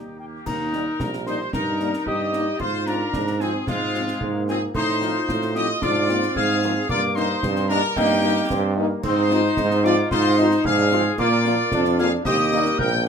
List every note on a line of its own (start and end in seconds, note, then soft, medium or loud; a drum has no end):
0.00 0.40 D#2 medium
0.00 0.16 G3 soft
0.00 0.15 A#3 soft
0.00 0.15 D#4 soft
0.00 0.19 D#4 soft
0.00 0.19 G4 soft
0.19 0.44 A#3 medium
0.19 0.44 G4 medium
0.19 0.25 G5 medium
0.46 0.91 D#2 medium
0.46 1.09 D#4 loud
0.46 1.27 A#4 loud
0.46 1.23 A#5 loud
0.46 concert bass drum medium
0.46 crash medium
0.73 0.83 G3 medium
0.73 0.83 A#3 medium
0.73 0.83 D#4 medium
0.73 snare medium
0.99 1.44 A#1 medium
0.99 1.49 G3 medium
0.99 concert bass drum medium
0.99 snare medium
1.13 snare medium
1.26 1.36 G3 medium
1.26 1.36 A#3 medium
1.26 1.36 D#4 medium
1.26 1.38 D#4 loud
1.26 1.51 C5 loud
1.26 1.51 C6 medium
1.26 snare medium
1.52 1.94 G2 medium
1.52 1.80 D#4 medium
1.52 2.03 D#4 loud
1.52 2.03 A#4 loud
1.52 2.03 A#5 loud
1.52 concert bass drum medium
1.52 snare medium
1.80 1.90 G3 medium
1.80 1.90 A#3 medium
1.80 1.92 D4 medium
1.80 1.90 D#4 medium
1.80 snare medium
1.93 snare medium
2.06 2.52 G2 medium
2.06 2.56 D#4 medium
2.06 2.57 G4 loud
2.06 2.60 D#5 loud
2.06 2.57 D#6 loud
2.06 concert bass drum medium
2.33 2.44 G3 medium
2.33 2.44 A#3 medium
2.33 2.44 D#4 medium
2.33 snare medium
2.60 3.05 G#2 medium
2.60 3.14 F4 loud
2.60 2.85 F4 loud
2.60 2.87 C5 loud
2.60 2.66 C6 loud
2.60 concert bass drum medium
2.60 crash soft
2.86 2.97 F3 medium
2.86 2.97 C4 medium
2.86 3.37 D4 medium
2.86 2.97 F4 medium
2.86 3.40 A#4 loud
2.86 3.42 A#5 loud
2.86 snare medium
3.13 3.59 G#2 loud
3.13 3.26 D4 loud
3.13 concert bass drum medium
3.13 snare medium
3.27 snare medium
3.40 3.51 F3 medium
3.40 4.17 C4 medium
3.40 3.53 C4 medium
3.40 3.51 C4 medium
3.40 3.51 F4 medium
3.40 3.66 G#4 loud
3.40 3.67 G#5 medium
3.40 snare medium
3.67 4.12 G#2 medium
3.67 4.44 G#3 loud
3.67 4.31 F4 loud
3.67 4.44 F5 loud
3.67 concert bass drum medium
3.67 snare medium
3.94 4.05 F3 medium
3.94 4.04 C4 medium
3.94 4.05 F4 medium
3.94 snare medium
4.08 snare medium
4.21 4.66 G#2 loud
4.21 4.71 A#3 medium
4.21 concert bass drum medium
4.48 4.58 F3 medium
4.48 4.60 C4 medium
4.48 4.58 C4 medium
4.48 4.58 F4 medium
4.48 4.60 G#4 loud
4.48 4.55 G#5 loud
4.48 snare medium
4.75 5.19 A2 loud
4.75 4.87 A3 loud
4.75 5.51 D#4 loud
4.75 5.51 C5 loud
4.75 5.51 C6 loud
4.75 concert bass drum medium
4.75 crash soft
5.01 5.11 F3 medium
5.01 5.11 C4 medium
5.01 5.11 D#4 medium
5.01 5.78 F4 loud
5.01 snare medium
5.28 5.73 A2 loud
5.28 concert bass drum medium
5.28 snare medium
5.42 snare medium
5.55 5.65 F3 medium
5.55 5.65 C4 medium
5.55 5.65 D#4 medium
5.55 5.67 G4 loud
5.55 5.80 D#5 loud
5.55 5.80 D#6 loud
5.55 snare medium
5.81 6.27 G#2 loud
5.81 6.09 D4 loud
5.81 6.32 F4 loud
5.81 6.36 D5 loud
5.81 6.32 D6 loud
5.81 concert bass drum medium
5.81 snare medium
6.08 6.19 F3 medium
6.08 6.19 A#3 medium
6.08 6.89 C4 loud
6.08 6.19 F4 medium
6.08 snare medium
6.22 snare medium
6.36 6.81 G#2 loud
6.36 6.86 G#4 loud
6.36 6.85 F5 loud
6.36 6.68 F6 loud
6.36 concert bass drum medium
6.62 6.72 F3 loud
6.62 6.72 A#3 medium
6.62 6.72 F4 medium
6.62 snare medium
6.89 7.34 G2 loud
6.89 7.39 A#3 loud
6.89 7.01 F4 loud
6.89 7.01 D5 loud
6.89 7.17 D6 loud
6.89 concert bass drum medium
6.89 crash soft
7.15 7.26 G3 medium
7.15 7.26 A#3 medium
7.15 7.66 D#4 loud
7.15 7.26 D#4 medium
7.15 7.66 C5 loud
7.15 7.71 C6 loud
7.15 snare medium
7.43 7.83 G2 loud
7.43 7.70 C4 loud
7.43 concert bass drum medium
7.43 snare medium
7.56 snare medium
7.69 7.79 G3 loud
7.69 7.79 A#3 loud
7.69 7.81 D4 loud
7.69 7.82 D4 loud
7.69 7.79 D#4 loud
7.69 7.95 A#4 loud
7.69 7.96 A#5 loud
7.69 snare medium
7.96 8.41 G2 loud
7.96 8.73 A#3 loud
7.96 8.46 D#4 loud
7.96 8.77 G4 loud
7.96 8.73 G5 loud
7.96 concert bass drum medium
7.96 snare medium
8.23 8.33 G3 medium
8.23 8.33 A#3 loud
8.23 8.33 D#4 medium
8.50 8.95 G2 loud
8.50 8.77 C4 loud
8.50 concert bass drum medium
8.50 snare medium
8.76 8.86 G3 loud
8.76 8.86 A#3 loud
8.76 9.04 A#3 loud
8.76 8.86 D#4 loud
9.03 9.48 G#2 loud
9.03 9.28 C4 loud
9.03 9.80 D#4 loud
9.03 9.80 C5 loud
9.03 9.86 C6 loud
9.03 concert bass drum medium
9.03 crash medium
9.30 9.40 F3 loud
9.30 9.40 C4 loud
9.30 10.07 D#4 loud
9.30 9.41 F4 loud
9.30 snare medium
9.57 10.02 G#2 loud
9.57 concert bass drum medium
9.57 snare medium
9.71 snare medium
9.84 9.93 F3 loud
9.84 9.93 C4 loud
9.84 9.94 F4 loud
9.84 10.11 F4 loud
9.84 9.96 D5 loud
9.84 10.11 D6 loud
9.84 snare medium
10.11 10.56 G#2 loud
10.11 10.65 D#4 loud
10.11 10.36 F4 loud
10.11 10.61 C5 loud
10.11 10.61 C6 loud
10.11 concert bass drum medium
10.11 snare medium
10.37 10.48 F3 loud
10.37 10.48 C4 loud
10.37 10.63 D#4 loud
10.37 10.47 F4 loud
10.37 snare medium
10.51 snare medium
10.65 11.09 G#2 loud
10.65 10.92 D4 loud
10.65 11.19 G#4 loud
10.65 11.15 F5 loud
10.65 11.15 F6 loud
10.65 concert bass drum medium
10.91 11.01 F3 loud
10.91 11.04 C4 loud
10.91 11.02 C4 loud
10.91 11.02 F4 loud
10.91 snare medium
11.18 11.63 A#2 loud
11.18 11.68 A#3 loud
11.18 11.95 F4 loud
11.18 11.95 D5 loud
11.18 11.95 D6 loud
11.18 concert bass drum medium
11.18 crash soft
11.45 11.55 F3 loud
11.45 11.55 A#3 loud
11.45 11.55 F4 loud
11.45 snare medium
11.72 12.17 F2 loud
11.72 12.22 D4 loud
11.72 concert bass drum medium
11.72 snare medium
11.85 snare medium
11.98 12.08 F3 loud
11.98 12.08 A#3 loud
11.98 12.09 F4 loud
11.98 12.11 G#4 loud
11.98 12.11 F5 loud
11.98 12.05 F6 loud
11.98 snare medium
12.25 12.70 D#2 loud
12.25 12.38 C4 loud
12.25 12.76 G4 loud
12.25 12.75 D#5 loud
12.25 12.80 D#6 loud
12.25 concert bass drum loud
12.25 snare medium
12.52 12.62 G3 loud
12.52 12.62 A#3 loud
12.52 13.08 A#3 loud
12.52 12.62 D#4 loud
12.52 snare medium
12.65 snare medium
12.79 13.08 A#1 loud
12.79 12.91 A#4 loud
12.79 13.06 G5 loud
12.79 13.05 G6 loud
12.79 concert bass drum medium